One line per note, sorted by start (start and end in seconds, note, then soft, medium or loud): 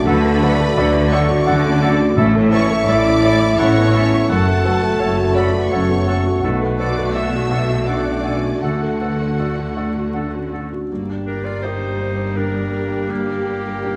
0.00 2.01 A3 loud
0.00 1.11 B5 loud
0.04 2.13 D2 medium
0.04 0.68 D2 medium
0.04 0.68 D3 loud
0.04 0.21 F#3 medium
0.04 0.21 F#4 medium
0.04 2.01 F#4 loud
0.04 0.22 A4 medium
0.04 1.09 B4 loud
0.04 0.44 E5 medium
0.04 0.15 F#5 medium
0.22 0.40 A3 medium
0.22 0.40 A4 medium
0.22 0.52 A4 medium
0.40 0.58 F#3 medium
0.40 0.58 F#4 medium
0.40 0.57 A4 medium
0.40 0.59 B4 medium
0.40 1.48 D5 loud
0.40 0.51 F#5 medium
0.59 0.76 A3 medium
0.59 0.76 A4 medium
0.59 0.87 A4 medium
0.75 1.39 D2 medium
0.75 1.39 D3 loud
0.75 0.92 F#3 medium
0.75 0.92 F#4 medium
0.75 0.92 A4 medium
0.75 1.05 D5 medium
0.75 0.86 F#5 medium
0.94 1.11 A3 medium
0.94 1.23 F#4 medium
0.94 1.12 A4 medium
1.11 1.29 F#3 medium
1.11 1.29 F#4 medium
1.11 1.28 A4 medium
1.11 1.47 C#5 medium
1.11 1.40 D5 medium
1.11 1.22 F#5 medium
1.11 1.47 C#6 loud
1.29 1.47 A3 medium
1.29 1.58 F#4 medium
1.29 1.47 A4 medium
1.46 2.09 D2 medium
1.46 2.09 D3 loud
1.46 1.64 F#3 medium
1.46 1.75 D4 medium
1.46 1.64 F#4 medium
1.46 1.62 A4 medium
1.46 2.17 D5 loud
1.46 1.55 F#5 medium
1.46 1.82 F#5 loud
1.46 2.17 D6 loud
1.64 1.82 A3 medium
1.64 1.82 C#4 medium
1.64 1.82 A4 medium
1.82 1.99 F#3 medium
1.82 2.10 D4 medium
1.82 1.99 F#4 medium
1.82 1.97 A4 medium
1.82 2.19 D5 medium
1.82 1.91 F#5 medium
1.99 2.17 A3 medium
1.99 2.17 F#4 medium
1.99 2.17 A4 medium
2.17 2.79 A1 medium
2.17 3.19 A2 loud
2.17 2.79 A2 loud
2.17 4.26 A2 medium
2.17 6.39 A3 loud
2.17 2.33 C#4 medium
2.17 2.33 E4 medium
2.17 4.26 E4 loud
2.17 2.32 A4 medium
2.17 3.61 E5 loud
2.17 2.26 E5 medium
2.35 2.52 A3 medium
2.35 2.51 C#4 medium
2.35 2.63 A4 medium
2.51 2.69 C#4 medium
2.51 2.70 E4 medium
2.51 2.68 A4 medium
2.51 2.70 B4 medium
2.51 2.84 C#5 loud
2.51 2.61 E5 medium
2.51 2.85 C#6 loud
2.70 2.88 A3 medium
2.70 2.87 C#4 medium
2.70 2.99 A4 medium
2.87 3.51 A1 loud
2.87 3.51 A2 medium
2.87 3.04 C#4 medium
2.87 3.05 E4 medium
2.87 3.04 A4 medium
2.87 3.16 C#5 medium
2.87 3.59 D5 loud
2.87 2.98 E5 medium
2.87 3.59 D6 loud
3.06 3.24 A3 medium
3.06 3.23 C#4 medium
3.06 3.34 E4 medium
3.23 3.40 C#4 medium
3.23 3.41 E4 medium
3.23 3.40 A4 medium
3.23 3.52 C#5 medium
3.23 3.32 E5 medium
3.41 3.59 A3 medium
3.41 3.58 C#4 medium
3.41 3.70 E4 medium
3.58 4.22 A1 medium
3.58 4.21 A2 medium
3.58 3.87 C#4 medium
3.58 3.76 C#4 medium
3.58 3.76 E4 medium
3.58 3.75 A4 medium
3.58 4.29 C#5 loud
3.58 3.69 E5 medium
3.58 3.96 F#5 medium
3.58 4.29 C#6 loud
3.78 3.95 A3 medium
3.78 3.95 B3 medium
3.78 3.94 C#4 medium
3.94 4.23 C#4 medium
3.94 4.11 C#4 medium
3.94 4.12 E4 medium
3.94 4.10 A4 medium
3.94 4.28 E5 medium
3.94 4.04 E5 medium
4.12 4.30 A3 medium
4.12 4.30 C#4 medium
4.12 4.30 E4 medium
4.29 4.92 F#1 medium
4.29 4.92 F#2 medium
4.29 6.39 F#2 medium
4.29 4.46 F#3 medium
4.29 4.46 F#4 medium
4.29 8.58 F#4 medium
4.29 5.35 A4 loud
4.29 4.46 A4 medium
4.29 5.01 F#5 loud
4.29 4.38 F#5 medium
4.29 5.33 A5 loud
4.47 4.65 A3 medium
4.47 4.75 A4 medium
4.47 4.65 A4 medium
4.65 4.83 F#3 medium
4.65 4.83 F#4 medium
4.65 4.81 A4 medium
4.65 4.82 B4 medium
4.65 4.75 F#5 medium
4.82 5.00 A3 medium
4.82 5.10 A4 medium
4.82 5.00 A4 medium
5.00 5.63 F#1 medium
5.00 5.63 F#2 loud
5.00 5.17 F#3 medium
5.00 5.17 F#4 medium
5.00 5.16 A4 medium
5.00 5.28 C#5 medium
5.00 5.37 C#5 medium
5.00 5.08 F#5 medium
5.17 5.36 A3 medium
5.17 5.46 F#4 medium
5.17 5.36 A4 medium
5.35 5.54 F#3 medium
5.35 5.54 F#4 medium
5.35 5.52 A4 medium
5.35 5.71 B4 medium
5.35 5.64 C#5 medium
5.35 5.73 D5 medium
5.35 5.44 F#5 medium
5.35 5.72 B5 loud
5.53 5.72 A3 medium
5.53 5.82 F#4 medium
5.53 5.72 A4 medium
5.70 6.35 F#1 medium
5.70 6.34 F#2 medium
5.70 5.88 F#3 medium
5.70 6.00 C#4 medium
5.70 5.89 F#4 medium
5.70 5.88 A4 medium
5.70 6.41 C#5 medium
5.70 6.18 C#5 medium
5.70 5.80 F#5 medium
5.70 6.42 C#6 medium
5.89 6.08 A3 medium
5.89 6.07 B3 medium
5.89 6.07 A4 medium
6.07 6.25 F#3 medium
6.07 6.36 C#4 medium
6.07 6.26 F#4 medium
6.07 6.23 A4 medium
6.07 6.15 F#5 medium
6.26 6.43 A3 medium
6.26 6.43 F#4 medium
6.26 6.44 A4 medium
6.41 8.58 B1 medium
6.41 8.59 B1 medium
6.41 8.58 B2 medium
6.41 10.53 A3 medium
6.41 7.84 A3 medium
6.41 7.83 F#4 medium
6.41 6.60 A4 medium
6.41 7.15 B4 medium
6.41 6.49 F#5 medium
6.62 6.90 A4 medium
6.77 6.95 A4 medium
6.77 6.97 B4 soft
6.77 7.12 D5 medium
6.77 6.85 F#5 medium
6.77 7.13 D6 medium
6.98 7.26 A4 medium
7.13 7.30 A4 medium
7.13 7.44 D5 medium
7.13 7.52 E5 medium
7.13 7.87 E5 medium
7.13 7.21 F#5 medium
7.13 7.87 E6 medium
7.34 7.62 F#4 soft
7.50 7.67 A4 medium
7.50 7.89 D5 medium
7.50 7.80 D5 medium
7.50 7.58 F#5 medium
7.70 7.99 F#4 soft
7.86 8.61 A3 medium
7.86 8.17 D4 soft
7.86 8.61 F#4 medium
7.86 8.04 A4 medium
7.86 8.62 D5 medium
7.86 7.95 F#5 medium
7.86 8.25 F#5 medium
7.86 8.62 D6 medium
8.06 8.24 C#4 soft
8.23 8.55 D4 soft
8.23 8.41 A4 soft
8.23 8.33 F#5 medium
8.23 8.61 G#5 medium
8.44 8.62 F#4 soft
8.62 10.66 D2 medium
8.62 10.86 D2 medium
8.62 10.66 D3 medium
8.62 10.66 A3 medium
8.62 10.53 F#4 medium
8.62 10.52 F#4 medium
8.62 10.66 F#4 medium
8.62 8.80 A4 medium
8.62 8.71 F#5 medium
8.62 10.48 F#5 medium
8.62 10.52 F#5 medium
8.82 9.12 A4 soft
9.00 9.16 A4 soft
9.00 9.20 B4 soft
9.00 9.09 F#5 soft
9.20 9.50 A4 soft
9.38 9.54 A4 soft
9.38 9.69 D5 soft
9.38 9.47 F#5 soft
9.59 9.88 F#4 soft
9.77 9.93 A4 soft
9.77 10.07 D5 soft
9.77 9.85 F#5 soft
9.96 10.26 F#4 soft
10.14 10.45 D4 soft
10.14 10.31 A4 soft
10.14 10.22 F#5 soft
10.34 10.53 C#4 soft
10.52 10.83 D4 soft
10.52 10.69 A4 soft
10.52 10.61 F#5 soft
10.73 10.91 F#4 soft
10.89 13.96 G1 medium
10.89 13.96 G2 medium
10.89 11.62 G2 soft
10.89 13.96 G3 medium
10.89 13.96 A#3 medium
10.89 11.08 A#3 medium
10.89 13.96 G4 medium
10.89 13.96 D5 medium
11.10 11.27 D4 soft
11.26 11.46 D4 medium
11.26 11.46 G4 medium
11.26 11.46 A#4 medium
11.26 11.44 A#4 medium
11.44 11.65 F4 medium
11.44 11.64 A#4 soft
11.44 11.61 D5 medium
11.44 11.63 D5 medium
11.62 12.38 D#4 medium
11.62 11.82 G4 soft
11.62 12.34 G4 soft
11.62 12.33 A#4 soft
11.62 12.38 C5 medium
11.62 12.36 C5 medium
11.62 12.33 D5 soft
11.82 12.00 D4 soft
12.00 12.18 A#3 soft
12.19 12.37 D4 soft
12.36 13.12 D4 medium
12.36 13.06 D4 soft
12.36 12.55 G4 soft
12.36 13.06 G4 soft
12.36 13.10 A#4 medium
12.36 13.11 A#4 medium
12.36 13.07 A#4 soft
12.55 12.73 A#4 soft
12.73 12.92 G4 soft
12.92 13.10 D4 soft
13.09 13.81 G2 medium
13.09 13.27 A#3 medium
13.09 13.96 A#3 medium
13.09 13.96 G4 medium
13.28 13.46 D4 medium
13.46 13.65 G4 medium
13.65 13.83 A#4 medium
13.84 13.96 A#3 soft
13.84 13.96 D4 soft
13.84 13.96 G4 medium
13.84 13.96 G4 soft